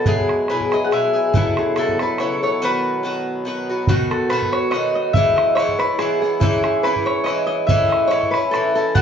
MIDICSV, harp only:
0, 0, Header, 1, 2, 480
1, 0, Start_track
1, 0, Tempo, 423729
1, 71, Time_signature, 3, 2, 24, 8
1, 10216, End_track
2, 0, Start_track
2, 0, Title_t, "Harp"
2, 0, Program_c, 0, 46
2, 0, Note_on_c, 0, 69, 87
2, 0, Note_on_c, 0, 71, 89
2, 0, Note_on_c, 0, 73, 98
2, 0, Note_on_c, 0, 75, 88
2, 0, Note_on_c, 0, 78, 110
2, 73, Note_on_c, 0, 68, 92
2, 141, Note_off_c, 0, 69, 0
2, 473, Note_off_c, 0, 78, 0
2, 559, Note_off_c, 0, 71, 0
2, 563, Note_on_c, 0, 71, 76
2, 829, Note_off_c, 0, 75, 0
2, 833, Note_on_c, 0, 75, 86
2, 956, Note_on_c, 0, 78, 72
2, 1055, Note_on_c, 0, 76, 101
2, 1123, Note_off_c, 0, 75, 0
2, 1543, Note_on_c, 0, 64, 105
2, 1563, Note_off_c, 0, 73, 0
2, 1791, Note_off_c, 0, 68, 0
2, 1796, Note_on_c, 0, 68, 76
2, 2027, Note_on_c, 0, 69, 83
2, 2095, Note_off_c, 0, 68, 0
2, 2283, Note_off_c, 0, 71, 0
2, 2287, Note_on_c, 0, 71, 74
2, 2491, Note_on_c, 0, 73, 79
2, 2754, Note_off_c, 0, 73, 0
2, 2759, Note_on_c, 0, 73, 78
2, 2777, Note_off_c, 0, 78, 0
2, 2991, Note_off_c, 0, 71, 0
2, 2996, Note_on_c, 0, 71, 95
2, 3007, Note_off_c, 0, 76, 0
2, 4406, Note_on_c, 0, 66, 86
2, 4502, Note_off_c, 0, 64, 0
2, 4515, Note_off_c, 0, 69, 0
2, 4652, Note_on_c, 0, 69, 76
2, 4860, Note_off_c, 0, 71, 0
2, 4864, Note_on_c, 0, 71, 84
2, 4925, Note_off_c, 0, 73, 0
2, 5124, Note_on_c, 0, 73, 83
2, 5333, Note_on_c, 0, 75, 104
2, 5606, Note_off_c, 0, 75, 0
2, 5610, Note_on_c, 0, 75, 76
2, 5815, Note_on_c, 0, 76, 112
2, 5883, Note_off_c, 0, 75, 0
2, 6073, Note_on_c, 0, 75, 77
2, 6141, Note_off_c, 0, 76, 0
2, 6284, Note_off_c, 0, 73, 0
2, 6288, Note_on_c, 0, 73, 95
2, 6550, Note_off_c, 0, 71, 0
2, 6555, Note_on_c, 0, 71, 94
2, 6779, Note_on_c, 0, 68, 90
2, 6847, Note_off_c, 0, 69, 0
2, 7036, Note_off_c, 0, 68, 0
2, 7040, Note_on_c, 0, 68, 79
2, 7108, Note_off_c, 0, 68, 0
2, 7167, Note_off_c, 0, 66, 0
2, 7250, Note_on_c, 0, 64, 96
2, 7318, Note_off_c, 0, 75, 0
2, 7516, Note_on_c, 0, 68, 78
2, 7735, Note_off_c, 0, 71, 0
2, 7739, Note_on_c, 0, 71, 101
2, 7991, Note_off_c, 0, 73, 0
2, 7995, Note_on_c, 0, 73, 91
2, 8200, Note_on_c, 0, 75, 105
2, 8268, Note_off_c, 0, 64, 0
2, 8453, Note_off_c, 0, 75, 0
2, 8458, Note_on_c, 0, 75, 97
2, 8684, Note_on_c, 0, 76, 102
2, 8752, Note_off_c, 0, 75, 0
2, 8940, Note_on_c, 0, 75, 85
2, 9008, Note_off_c, 0, 76, 0
2, 9142, Note_off_c, 0, 73, 0
2, 9146, Note_on_c, 0, 73, 99
2, 9408, Note_off_c, 0, 71, 0
2, 9412, Note_on_c, 0, 71, 91
2, 9641, Note_on_c, 0, 69, 97
2, 9709, Note_off_c, 0, 68, 0
2, 9909, Note_off_c, 0, 69, 0
2, 9913, Note_on_c, 0, 69, 86
2, 10136, Note_on_c, 0, 78, 125
2, 10216, Note_off_c, 0, 69, 0
2, 10216, Note_off_c, 0, 71, 0
2, 10216, Note_off_c, 0, 73, 0
2, 10216, Note_off_c, 0, 75, 0
2, 10216, Note_off_c, 0, 78, 0
2, 10216, End_track
0, 0, End_of_file